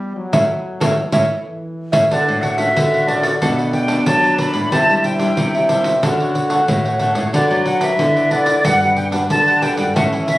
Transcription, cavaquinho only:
0.33 A4 C#5 E5
0.80 A4 C#5 E5
1.13 A4 C#5 E5
1.92 A4 C#5 E5
2.11 D4 A4 F#5
2.42 D4 A4 C#5 F#5
2.58 D4 A4 C#5 F#5
2.93 A4 C#5 F#5
3.07 D4 A4 C#5 F#5
3.22 A4 C#5 F#5
3.41 D4 A4 B4 D5
3.58 A4 B4 D5
3.88 D4 A4 B4 D5
4.23 A4 B4 D5
4.37 D4 A4 B4 D5
4.53 A4 B4 D5
4.71 D4 G4 C5 E5
5.03 D4 G4 C5 E5
5.20 D4 G4 C5 E5
5.55 G4 C5 E5
5.69 D4 G4 C5 E5
5.84 G4 C5 E5
6.03 D4 A4 C#5 F#5
6.20 A4 C#5 F#5
6.50 D4 A4 C#5 F#5
6.84 A4 C#5 F#5
6.99 D4 A4 C#5 F#5
7.15 A4 C#5 F#5
7.33 D4 B4 D5 F#5
7.65 D4 B4 D5 F#5
7.80 D4 B4 D5 F#5
8.16 B4 D5 F#5
8.30 D4 B4 D5 F#5
8.45 B4 D5 F#5
8.64 D4 G4 B4 F#5
8.81 G4 B4 F#5
9.11 D4 G4 B4 F#5
9.47 G4 B4 F#5
9.61 D4 G4 B4 F#5
9.76 G4 B4 F#5
9.95 E4 A4 C#5 E5
10.26 E4 A4 C#5 E5

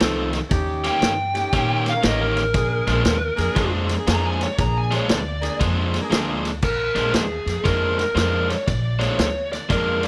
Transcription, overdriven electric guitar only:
0.00 F2 D#3 A3 C4
0.84 D#3 A#3 C#4 G4
1.53 D#3 A#3 C#4 G4
2.03 D#3 A#3 C#4 G4
2.87 A#2 F3 G#3 D4
3.55 A#2 F3 G#3 D4
4.07 A#2 F3 G#3 D4
4.91 A#2 F3 G#3 D4
5.60 A#2 F3 G#3 D4
6.10 A#2 F3 G#3 D4
6.95 A#2 F3 G#3 D4
7.64 A#2 F3 G#3 D4
8.15 A#2 F3 G#3 D4
8.99 A#2 F3 G#3 D4
9.69 A#2 F3 G#3 D4

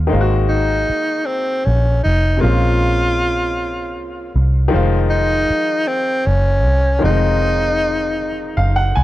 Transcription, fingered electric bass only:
Already playing: D#2
0.12 G#1
0.89 muted fingered electric bass stroke
1.67 A#1
2.05 F1
2.43 A#1
3.98 C2
4.36 C2
4.74 F1
5.50 muted fingered electric bass stroke
6.27 F#1
6.65 C2
7.04 F1
8.57 F#1
8.97 C2

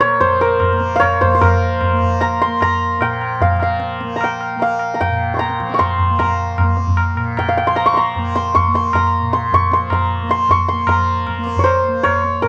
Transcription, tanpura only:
Already playing: A#2 F3 A#3
0.20 F3
0.72 A#3
1.25 A#3
1.41 F3
1.93 A#3
2.47 A#3
2.98 A#2
3.52 F3
4.03 A#3
4.56 A#3
5.07 A#2
5.59 F3
6.10 A#3
6.63 A#3
7.15 A#2
7.66 F3
8.18 A#3
8.68 A#3
9.20 A#2
9.73 F3
10.23 A#3
10.72 A#3
10.88 F3
11.38 A#3
11.88 A#3
12.40 A#2

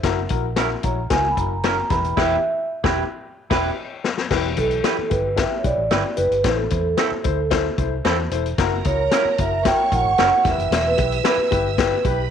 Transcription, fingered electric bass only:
0.03 F#1
0.30 A#1
0.84 A#1
1.11 C#2
1.37 F#1
1.90 E1
2.17 E1
2.84 E1
3.51 E1
4.30 E1
4.58 B1
4.98 muted fingered electric bass stroke
5.11 G1
5.64 B1
5.78 A1
5.91 G1
6.18 F#1
6.31 G1
6.44 A1
6.72 E2
7.11 muted fingered electric bass stroke
7.25 D2
7.78 C2
8.05 E2
8.31 E1
8.58 F#1
8.85 C#2
9.25 muted fingered electric bass stroke
9.39 F#1
9.92 A#1
10.05 G#1
10.18 F#1
10.45 E1
10.58 F#1
10.71 E1
10.98 B1
11.37 muted fingered electric bass stroke
11.52 G1
12.05 B1

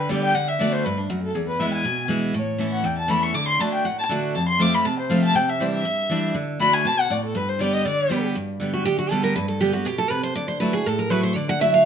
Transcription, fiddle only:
Already playing: B4
0.09 D5
0.23 G5
0.34 F#5
0.48 E5
0.60 D5
0.72 C5
0.84 B4
0.98 D4
1.10 F#4
1.23 A4
1.34 G#4
1.48 B4
1.60 E5
1.73 G#5
2.35 C#5
2.72 F#5
2.85 G5
2.98 A5
3.10 B5
3.23 C#6
3.34 D6
3.47 C6
3.60 A5
3.74 G5
3.85 F#5
3.99 A5
4.35 A5
4.48 C6
4.61 D6
4.74 B5
4.85 A5
4.99 C5
5.10 F5
5.24 A5
5.36 G5
5.49 E5
5.61 C5
5.73 E5
6.60 B5
6.73 G#5
6.86 A5
7.00 F#5
7.12 D5
7.25 A4
7.37 B4
7.49 C5
7.60 D5
7.73 D#5
7.86 D5

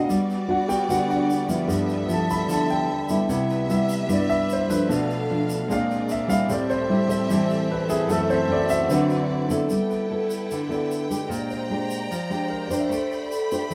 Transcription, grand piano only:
Already playing: F3 A3 D#4 D#5 F5
0.51 F#5
0.68 G3 B3 F#4 G5
0.91 F#5
1.10 F#5
1.68 G3 B3
2.13 A5
2.31 B5
2.52 A5
2.70 G5
3.29 C3 B3 E4
3.71 E5
4.13 D5
4.30 E5
4.53 C5
4.70 B4
4.88 B2 A3 D4
5.69 A#2 G#3 D4 F5
6.11 E5
6.29 F5
6.49 A2 G3 C4 D5
6.70 C5
7.08 A2 G3 C4
7.71 B4
7.90 G#4
8.09 F#2 E3 A3 A4
8.30 C5
8.52 D5
8.70 E5
8.88 D3 F#3 C4
9.90 B4
10.71 D5
11.50 C5
12.50 A#4
12.65 D5
12.79 E5

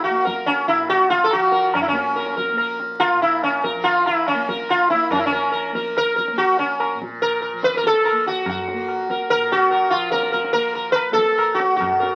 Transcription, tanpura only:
Already playing: A#2 F3 A#3
0.10 A#3
0.70 A#2
1.33 F3
1.91 A#3
2.53 A#3
3.11 A#2
3.74 F3
4.34 A#3
4.93 A#3
5.11 F3
5.72 A#3
6.32 A#3
6.94 A#2
7.53 F3
8.12 A#3
8.73 A#3
9.34 A#2
9.94 F3
10.53 A#3
11.11 A#3
11.74 A#2

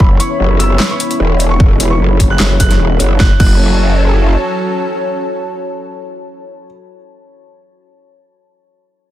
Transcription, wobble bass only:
0.00 F#1
0.40 F#1
1.20 E1
2.00 F#1
2.40 F#1
2.60 F#1
2.80 E1
3.00 F#1
3.20 F#1
3.40 F#1

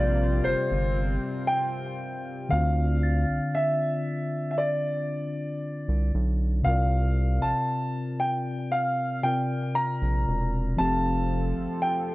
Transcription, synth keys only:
Already playing: C3 C4 F4 A#4 D5
2.49 D3 C4 D4
2.54 F4 D5
6.63 C3 C4 F4
6.68 A#4 D5
9.23 C3 C4 F4 A#4 D5
10.76 F3 C4 G4
10.82 A4 F5

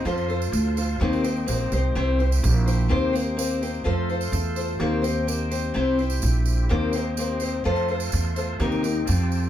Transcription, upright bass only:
0.05 F2
0.52 D2
1.01 D#2
1.48 A#1
1.72 C2
1.95 C2
2.43 A#1
2.91 D#2
3.86 F2
4.32 E2
4.80 D#2
5.75 C2
6.23 A#1
6.71 D#2
7.65 F2
8.13 E2
8.60 D#2
9.09 F2

